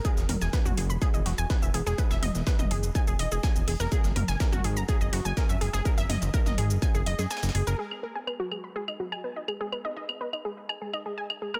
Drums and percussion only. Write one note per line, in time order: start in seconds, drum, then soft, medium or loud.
0.05 kick loud
0.05 closed hi-hat medium
0.05 shaker medium
0.17 snare soft
0.17 shaker medium
0.29 closed hi-hat medium
0.29 open hi-hat loud
0.29 mid tom medium
0.41 snare soft
0.41 shaker medium
0.53 kick loud
0.53 snare loud
0.53 closed hi-hat medium
0.53 shaker medium
0.66 mid tom medium
0.66 shaker medium
0.77 closed hi-hat medium
0.77 open hi-hat medium
0.90 shaker medium
1.02 kick loud
1.02 closed hi-hat medium
1.02 shaker medium
1.14 shaker soft
1.26 snare soft
1.26 closed hi-hat medium
1.26 open hi-hat loud
1.38 shaker medium
1.50 kick loud
1.50 snare loud
1.50 closed hi-hat medium
1.50 shaker medium
1.62 shaker medium
1.74 closed hi-hat medium
1.74 open hi-hat medium
1.87 snare soft
1.87 shaker medium
1.98 kick loud
1.98 closed hi-hat medium
1.98 shaker medium
2.11 snare medium
2.11 shaker medium
2.23 closed hi-hat medium
2.23 open hi-hat loud
2.23 mid tom medium
2.35 snare soft
2.35 shaker medium
2.47 kick loud
2.47 snare loud
2.47 closed hi-hat medium
2.47 shaker medium
2.59 closed hi-hat soft
2.59 mid tom loud
2.59 shaker medium
2.71 closed hi-hat medium
2.71 open hi-hat medium
2.83 shaker medium
2.95 kick loud
2.95 closed hi-hat medium
2.95 shaker medium
3.07 shaker medium
3.19 closed hi-hat medium
3.19 open hi-hat loud
3.32 shaker medium
3.43 kick loud
3.43 snare loud
3.43 closed hi-hat medium
3.43 shaker medium
3.56 shaker medium
3.68 open hi-hat medium
3.80 snare soft
3.80 shaker medium
3.92 kick loud
3.92 closed hi-hat medium
3.92 shaker medium
4.04 snare soft
4.04 shaker medium
4.16 closed hi-hat medium
4.16 open hi-hat loud
4.16 mid tom medium
4.28 snare soft
4.28 shaker medium
4.40 kick loud
4.40 snare loud
4.40 closed hi-hat medium
4.40 shaker medium
4.53 mid tom medium
4.53 shaker medium
4.64 closed hi-hat medium
4.64 open hi-hat medium
4.77 shaker medium
4.89 kick loud
4.89 closed hi-hat medium
4.89 shaker medium
5.01 shaker medium
5.13 snare soft
5.13 closed hi-hat medium
5.13 open hi-hat loud
5.25 shaker medium
5.37 kick loud
5.37 snare loud
5.37 closed hi-hat medium
5.37 shaker medium
5.49 shaker medium
5.61 closed hi-hat medium
5.61 open hi-hat medium
5.74 snare soft
5.74 shaker medium
5.85 kick loud
5.85 closed hi-hat medium
5.85 shaker medium
5.98 closed hi-hat medium
5.98 shaker medium
6.10 snare soft
6.10 open hi-hat loud
6.10 mid tom medium
6.22 closed hi-hat medium
6.22 shaker medium
6.34 kick loud
6.34 closed hi-hat medium
6.34 shaker medium
6.46 snare soft
6.46 mid tom medium
6.46 shaker medium
6.58 closed hi-hat medium
6.58 open hi-hat medium
6.70 shaker medium
6.82 kick loud
6.82 closed hi-hat medium
6.82 shaker medium
6.95 shaker medium
7.06 closed hi-hat medium
7.06 open hi-hat loud
7.19 snare soft
7.19 shaker medium
7.31 snare medium
7.31 closed hi-hat medium
7.31 shaker medium
7.37 snare medium
7.37 closed hi-hat medium
7.43 snare medium
7.43 closed hi-hat medium
7.43 shaker medium
7.49 snare medium
7.49 closed hi-hat medium
7.55 open hi-hat medium
7.67 shaker medium
7.79 closed hi-hat medium
7.91 snare soft
7.91 claves soft
8.03 closed hi-hat medium
8.16 snare soft
8.27 closed hi-hat medium
8.27 claves medium
8.52 closed hi-hat medium
8.52 claves soft
8.76 closed hi-hat medium
8.88 claves medium
9.00 snare soft
9.00 closed hi-hat medium
9.12 claves soft
9.24 closed hi-hat medium
9.48 closed hi-hat medium
9.48 claves medium
9.61 snare soft
9.72 closed hi-hat medium
9.72 claves soft
9.85 snare medium
9.97 closed hi-hat medium
10.09 snare soft
10.09 claves medium
10.21 closed hi-hat medium
10.33 closed hi-hat soft
10.33 claves soft
10.45 closed hi-hat medium
10.69 closed hi-hat medium
10.69 claves medium
10.93 closed hi-hat medium
10.93 claves soft
11.18 closed hi-hat medium
11.30 claves medium
11.42 open hi-hat medium
11.54 snare soft
11.54 claves soft